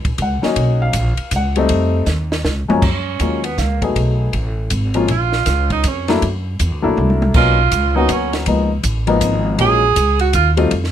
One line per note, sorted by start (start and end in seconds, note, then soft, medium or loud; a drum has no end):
0.05 0.17 A#1 medium
0.05 kick medium
0.05 ride medium
0.18 0.41 C#2 loud
0.18 kick soft
0.18 ride medium
0.22 0.78 F#5 medium
0.42 0.91 F#3 medium
0.42 0.91 A#3 medium
0.42 0.92 C#4 medium
0.42 0.92 D#4 medium
0.42 snare soft
0.56 0.93 B1 medium
0.56 kick soft
0.56 ride medium
0.82 1.29 F5 medium
0.93 1.16 A#1 loud
0.93 kick soft
0.93 hi-hat pedal medium
0.93 ride medium
1.17 muted upright bass stroke soft
1.17 ride medium
1.31 1.68 C#2 loud
1.31 kick soft
1.31 hi-hat pedal medium
1.31 ride medium
1.36 1.69 F#5 medium
1.56 2.05 G3 medium
1.56 2.05 A3 medium
1.56 2.05 C4 medium
1.56 2.06 D#4 medium
1.56 ride medium
1.69 2.06 F2 medium
1.69 kick soft
1.69 ride medium
2.06 2.43 D#2 loud
2.06 snare medium
2.06 hi-hat pedal medium
2.32 snare medium
2.44 2.67 C#2 loud
2.44 snare medium
2.69 2.81 F#2 medium
2.69 2.81 F3 medium
2.69 2.82 G#3 medium
2.69 2.82 A#3 medium
2.69 2.82 C#4 medium
2.69 muted upright bass stroke soft
2.69 mid tom loud
2.82 3.19 F#2 medium
2.82 3.45 C#4 medium
2.82 kick medium
2.82 crash medium
3.20 3.57 D#2 medium
3.20 3.42 F#3 medium
3.20 3.42 G#3 medium
3.20 3.42 A#3 medium
3.20 3.43 C#4 medium
3.20 3.43 F4 medium
3.20 kick soft
3.20 hi-hat pedal medium
3.20 ride medium
3.44 3.61 B3 medium
3.44 ride medium
3.58 3.95 C#2 medium
3.58 3.83 A#3 medium
3.58 kick soft
3.58 snare soft
3.58 hi-hat pedal medium
3.81 4.30 F#3 medium
3.81 4.31 A3 medium
3.81 4.31 B3 medium
3.81 4.31 D#4 medium
3.81 4.31 G#4 medium
3.81 kick medium
3.81 ride soft
3.95 4.32 B1 medium
3.95 kick soft
3.95 ride medium
4.33 4.70 A1 medium
4.33 kick soft
4.33 ride medium
4.70 5.07 G#1 loud
4.70 kick soft
4.70 hi-hat pedal medium
4.70 ride medium
4.94 5.07 F3 medium
4.94 5.07 G#3 medium
4.94 5.08 A#3 medium
4.94 5.08 C#4 medium
4.94 5.08 F4 medium
4.94 ride soft
5.08 5.45 A#1 medium
5.08 5.67 F4 medium
5.08 kick soft
5.08 ride medium
5.32 snare soft
5.46 5.83 C#2 loud
5.46 kick soft
5.46 snare soft
5.46 hi-hat pedal medium
5.46 ride medium
5.70 5.88 D#4 medium
5.70 kick medium
5.70 ride soft
5.84 6.21 F2 medium
5.84 6.10 C#4 medium
5.84 kick soft
5.84 hi-hat pedal medium
5.84 ride medium
6.08 6.21 F#3 medium
6.08 6.21 A3 medium
6.08 6.21 A#3 medium
6.08 6.21 D4 medium
6.08 6.21 E4 medium
6.08 snare medium
6.08 ride soft
6.22 6.58 F#2 medium
6.22 kick soft
6.22 ride medium
6.59 6.72 E2 medium
6.59 kick soft
6.59 hi-hat pedal medium
6.59 ride medium
6.72 6.84 D2 medium
6.82 6.96 A#1 medium
6.82 7.31 F#3 medium
6.82 7.31 A3 medium
6.82 7.32 A#3 medium
6.82 7.32 D4 medium
6.82 7.32 E4 medium
6.97 7.34 C2 medium
6.97 mid tom medium
7.10 mid tom medium
7.22 mid tom medium
7.34 7.71 B1 medium
7.34 7.56 F#3 medium
7.34 7.56 A#3 medium
7.34 7.57 B3 medium
7.34 7.57 C#4 medium
7.34 7.57 D#4 medium
7.34 7.97 F4 loud
7.34 kick medium
7.34 crash medium
7.72 8.08 C#2 medium
7.72 kick soft
7.72 hi-hat pedal medium
7.72 ride medium
7.95 8.44 F#3 medium
7.95 8.44 A#3 medium
7.95 8.45 B3 medium
7.95 8.45 C#4 medium
7.95 8.12 D#4 medium
7.95 8.45 F#4 medium
8.09 8.46 D2 medium
8.09 8.34 C#4 medium
8.09 kick soft
8.09 hi-hat pedal medium
8.09 ride medium
8.33 snare medium
8.33 ride soft
8.46 8.83 C#2 medium
8.46 8.68 F3 medium
8.46 8.69 G#3 medium
8.46 8.69 A#3 medium
8.46 8.69 B3 medium
8.46 8.69 D#4 medium
8.46 kick soft
8.46 ride medium
8.83 9.20 A1 medium
8.83 kick soft
8.83 hi-hat pedal medium
8.83 ride medium
9.07 9.56 F3 medium
9.07 9.56 G#3 medium
9.07 9.56 A#3 medium
9.07 9.57 B3 medium
9.07 9.57 D#4 medium
9.07 ride soft
9.21 9.58 G#1 loud
9.21 kick soft
9.21 hi-hat pedal medium
9.21 ride medium
9.58 9.95 A#1 medium
9.58 9.80 F#3 medium
9.58 9.81 G#3 medium
9.58 9.81 A#3 medium
9.58 9.81 C#4 medium
9.58 9.81 F4 medium
9.58 10.17 G#4 loud
9.58 kick soft
9.58 ride medium
9.96 10.33 C#2 loud
9.96 kick soft
9.96 hi-hat pedal medium
9.96 ride medium
10.19 10.33 F#4 medium
10.19 ride medium
10.33 10.70 D#2 loud
10.33 10.49 F4 medium
10.33 kick soft
10.33 hi-hat pedal medium
10.33 ride medium
10.57 10.70 G3 medium
10.57 10.70 A3 medium
10.57 10.70 C4 medium
10.57 10.71 D#4 medium
10.57 10.71 F4 medium
10.57 ride medium
10.71 10.92 F2 medium
10.71 kick soft
10.71 ride medium
10.84 snare soft